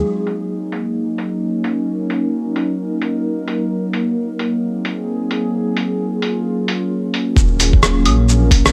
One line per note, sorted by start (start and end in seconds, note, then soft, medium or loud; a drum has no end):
0.00 8.72 F#3 medium
0.00 6.28 D#4 medium
0.00 1.52 G#4 medium
0.12 8.72 A#3 medium
0.27 open hi-hat medium
0.72 open hi-hat medium
0.94 3.70 C#4 medium
1.14 4.45 A#4 medium
1.18 open hi-hat medium
1.64 open hi-hat medium
2.10 open hi-hat medium
2.56 open hi-hat medium
3.02 open hi-hat medium
3.48 open hi-hat medium
3.93 open hi-hat medium
4.39 open hi-hat medium
4.52 5.54 C4 medium
4.52 8.09 G#4 medium
4.85 open hi-hat medium
5.31 open hi-hat medium
5.77 8.48 F4 medium
5.77 open hi-hat medium
5.97 8.72 C#4 medium
6.22 open hi-hat medium
6.68 open hi-hat medium
7.14 open hi-hat medium
7.36 8.07 D#1 loud
7.36 kick loud
7.36 shaker medium
7.60 open hi-hat medium
7.60 shaker medium
7.73 kick loud
7.83 cross-stick loud
7.83 shaker medium
7.91 8.72 A#4 medium
8.05 8.72 A#1 medium
8.05 open hi-hat medium
8.05 claves medium
8.29 shaker medium
8.51 kick loud
8.51 open hi-hat medium
8.66 8.72 D#4 medium
8.66 cross-stick loud
8.66 shaker medium